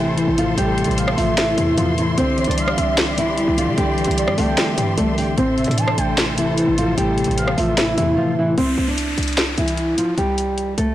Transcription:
Already playing: A1 A2 C3 E3 A3 E4 A4 C5 E5 C6
0.00 E3
0.18 E3, closed hi-hat
0.28 A1
0.38 A2 F3 F4, closed hi-hat
0.57 A1 A2 G3 G4, closed hi-hat
0.78 C3, closed hi-hat
0.84 A1, closed hi-hat
0.91 closed hi-hat
0.98 E3 F5, closed hi-hat
1.08 cross-stick
1.17 A1 F3 A3 F4 E5, open hi-hat
1.38 E3 E4, snare, clap, closed hi-hat
1.57 E2 C3 E3 E4, closed hi-hat
1.77 E2 E3 F3 F4, closed hi-hat
1.98 A2 E3 E4, closed hi-hat
2.18 C2 D3 C4 G4 C5 D5, closed hi-hat
2.38 E3 C5, closed hi-hat
2.44 C2 D4, closed hi-hat
2.49 D5, closed hi-hat
2.58 G3 F5, closed hi-hat
2.68 cross-stick
2.78 C2 C4 E5, closed hi-hat
2.98 snare, clap, closed hi-hat
3.18 E3 E4, closed hi-hat
3.38 G3, closed hi-hat
3.48 C2
3.58 D3 F3 F4, closed hi-hat
3.68 C3
3.77 C2 D3 G3 G4, closed hi-hat
3.98 E3, closed hi-hat
4.04 C2, closed hi-hat
4.11 closed hi-hat
4.17 G3 D5, closed hi-hat
4.28 G2, cross-stick
4.38 C2 A3 C4 A4 G5, open hi-hat
4.58 snare, clap, closed hi-hat
4.77 G2 E3 G3 G4, closed hi-hat
4.97 C2 G3 A3 A4, closed hi-hat
5.18 D3 G3 G4, open hi-hat
5.37 A1 A2 C4 A4 C5, closed hi-hat
5.58 C3 E5, closed hi-hat
5.64 A2 D4, closed hi-hat
5.69 D5, closed hi-hat
5.78 E3 A5, closed hi-hat
5.88 cross-stick
5.98 A1 A3 G5, closed hi-hat
6.18 snare, clap, closed hi-hat
6.38 C3 E3 E4, closed hi-hat
6.58 E3, closed hi-hat
6.68 A1
6.78 A2 F3 F4, closed hi-hat
6.97 A1 A2 G3 G4, closed hi-hat
7.18 C3, closed hi-hat
7.24 A1, closed hi-hat
7.31 closed hi-hat
7.38 E3 F5, closed hi-hat
7.48 cross-stick
7.57 A1 F3 A3 F4 E5, open hi-hat
7.78 E3 E4, snare, clap, closed hi-hat
7.98 E2 C3 E3 E4, closed hi-hat
8.17 E3 F3 F4
8.38 A2 E3 E4
8.58 C2 C4 C5, closed hi-hat, downlifter
8.78 C2
8.88 D4 D5
8.98 closed hi-hat
9.18 C2, closed hi-hat
9.23 closed hi-hat
9.28 closed hi-hat
9.33 closed hi-hat
9.38 snare, clap, closed hi-hat
9.58 C2 E3 E4, closed hi-hat
9.68 closed hi-hat
9.77 closed hi-hat
9.98 F3 F4, closed hi-hat
10.17 C2 G3 G4, closed hi-hat
10.38 closed hi-hat
10.58 closed hi-hat
10.78 C2 A3 A4, closed hi-hat

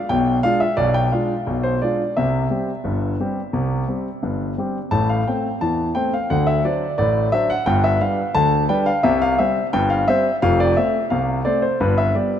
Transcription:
0.09 B1 B2 G5
0.43 G#3 D4 F4 F5
0.60 E5
0.77 B1 B2 D5
0.94 G5
1.12 G#3 D4 F4 F5
1.47 B1 B2
1.63 C5
1.82 G#3 D4 F4 D5
2.17 C2 C3 E5
2.50 G3 C4 G4
2.84 G1 G2
3.20 G3 C4 G4
3.53 C2 C3
3.88 G3 C4 G4
4.23 G1 G2
4.58 G3 C4 G4
4.91 A1 A2 A5
5.09 F5
5.28 A3 C4 C5 G5
5.61 E2 E3 A5
5.95 A3 C4 C5 G5
6.14 F5
6.30 D2 D3 F#5
6.47 E5
6.65 F#3 D4 C5 D5
6.98 A1 A2 D5
7.32 F#3 D4 C5 E5
7.50 F#5
7.66 G1 G2 G5
7.84 E5
8.01 G3 D4 B4 F5
8.35 D2 D3 A5
8.69 G3 D4 B4 G5
8.86 F5
9.03 C2 C3 E5
9.22 F5
9.38 G3 C4 C5 E5
9.73 G1 G2 G5
9.90 F5
10.08 G3 C4 C5 E5
10.42 F1 F2 F5
10.60 D5
10.77 A3 C4 C5 E5
11.10 C2 C3 F5
11.45 A3 C4 C5 D5
11.62 C5
11.80 G1 G2 B4
11.98 E5
12.15 G3 B3 G4 D5

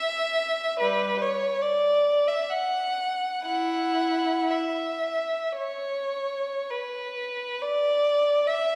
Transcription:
Already playing: E5
0.79 G3 B4
1.21 C#5
1.62 D5
2.27 E5
2.50 F#5
3.46 E4 F#5
4.51 E5
5.57 C#5
6.70 B4
7.62 D5
8.47 E5

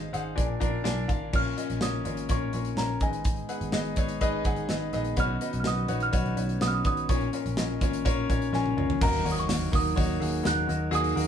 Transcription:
Already playing: G#2 D#4 G#4 C5 D#5 F5 G#5
0.13 G#1 D#4 G#4 C5 F5 F#5, closed hi-hat
0.20 F#5
0.35 A#1 A#2 D4 F4 A#4 D5 G#5, kick, closed hi-hat
0.60 A#1 D4 F4 A#4 D5 A#5, kick, closed hi-hat
0.84 B1 D4 F4 A#4 D5 G#5, snare, closed hi-hat
1.08 G#1 D4 F4 A#4 F5 A#5, kick, closed hi-hat
1.33 A#1 A#2 C#3 F3 A#3 C#4 F4 A#4 C#5 F6, kick, crash
1.57 C#4 F4 A#4 D#5, closed hi-hat
1.70 A#1, closed hi-hat
1.81 A#1 C#4 F4 A#4 C#5 D#6, snare
2.05 G#1 C#4 F4 A#4 C#5, closed hi-hat
2.17 closed hi-hat
2.29 A#1 C#4 F4 A#4 C#5 C#6, kick, closed hi-hat
2.53 A#1 C#4 F4 A#4 C#5, closed hi-hat
2.65 closed hi-hat
2.77 A#1 C#4 F4 A#4 C#5 A#5, snare
3.00 G#1 G#2 D#3 G#3 B3 D#4 G#4 A#4 D#5 G#5, kick, closed hi-hat
3.08 B4
3.13 closed hi-hat
3.24 kick, closed hi-hat
3.36 closed hi-hat
3.49 D#4 G#4 B4 F#5, closed hi-hat
3.61 G#1, closed hi-hat
3.72 G#1 D#4 G#4 B4 D#5, snare
3.85 closed hi-hat
3.96 G#1 D#4 G#4 B4 C#5, kick, closed hi-hat
4.08 closed hi-hat
4.21 G#1 D#4 G#4 B4 D#5, kick, closed hi-hat
4.45 G#1 D#4 G#4 B4 F#5 G#5, kick, closed hi-hat
4.56 closed hi-hat
4.69 G#1 D#4 G#4 B4 D#5, snare
4.93 A#1 D#4 G#4 B4 D#5, snare, closed hi-hat
5.04 closed hi-hat
5.17 B1 B2 C#4 D#4 F#4 B4 C#5 F6, kick, closed hi-hat
5.41 D#4 F#4 B4 D#5, closed hi-hat
5.53 B1, closed hi-hat
5.60 F6
5.64 B1 D#4 F#4 B4 D#5 D#6, snare
5.88 A#1 D#4 F#4 B4 C#5, closed hi-hat
6.00 F6, closed hi-hat
6.12 B1 D#4 F#4 B4 C#5, kick, closed hi-hat
6.25 closed hi-hat
6.37 B1 D#4 F#4 B4 C#5, closed hi-hat
6.49 closed hi-hat
6.61 B1 D#4 F#4 B4 C#5 D#6, snare
6.68 F6
6.74 D#6
6.85 G#1 D#4 F#4 B4 C#5 D#6, kick, closed hi-hat
6.97 closed hi-hat
7.09 A#1 A#2 F3 A#3 C#4 F4 A#4 C#5 C#6, kick, closed hi-hat
7.21 closed hi-hat
7.33 C#4 F4 A#4 C#5, closed hi-hat
7.46 A#1, closed hi-hat
7.57 A#1 C#4 F4 A#4 D#5, snare
7.81 G#1 C#4 F4 A#4 C#5, kick, closed hi-hat
7.93 closed hi-hat
8.05 A#1 C#4 F4 A#4 C#5, kick, closed hi-hat
8.29 A#1 C#4 F4 A#4 C#5, kick, closed hi-hat
8.42 closed hi-hat
8.53 A#1 C#4 F4 A#4 C#5 G#5, snare
8.66 high tom
8.77 C#2 C#4 F4 A#4 C#5, mid tom
8.90 floor tom
9.01 D#2 D#3 F#3 A#3 D#4 F#4 A#4 A#5, kick, crash, impact
9.13 open hi-hat
9.25 D#2 A#3 D#4 F#4 C#5, hi-hat pedal, open hi-hat
9.32 D#6
9.37 C#6, hi-hat pedal
9.48 D#2 A#3 D#4 F#4 C#5, snare, hi-hat pedal, open hi-hat
9.72 D#2 A#3 D#4 F#4 A#4 D#6, kick, hi-hat pedal, open hi-hat
9.96 D#2 A#3 D#4 F#4 C#5, kick, hi-hat pedal, open hi-hat
10.20 D#2 A#3 D#4 F#4 G#4, hi-hat pedal, open hi-hat
10.43 D#2 A#3 D#4 F#4 A#4 F#6, snare, hi-hat pedal, open hi-hat
10.67 D#2 A#3 D#4 F#4 A#4, hi-hat pedal, open hi-hat
10.91 D#2 D#3 A#3 D#4 F#4 G#4, hi-hat pedal, open hi-hat
10.95 D#6
11.04 open hi-hat
11.15 D#2 A#3 D#4 F#4 A#4, hi-hat pedal, open hi-hat

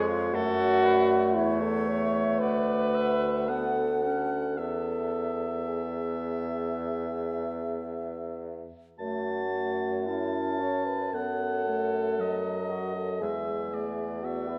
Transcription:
Already playing: F2 G#3 C#5
0.08 F4
0.33 F#2 A3 F#4 A4 C#5
0.83 B4 D5
1.35 E2 E4 C#5 E5
1.61 A4
1.88 C#5
2.39 D2 B4 D5 F#5
2.94 E5
3.47 B3 A4 F#5
4.03 C#4 F#5
4.57 E2 B3 A4 E5
5.68 G#4
8.98 F#2 A3 F#4 C#5 A5
9.55 A3
10.06 C#4 E4 C#5 A5
10.60 C#5
10.86 B4
11.12 F#2 B3 A4 F#5
11.67 A3
12.19 F#3 D#5
12.70 F#4
12.95 A4
13.21 E2 G#3 G#4 E5
13.73 A3 D5
14.22 B3 F#4 D5 E5
14.48 B4

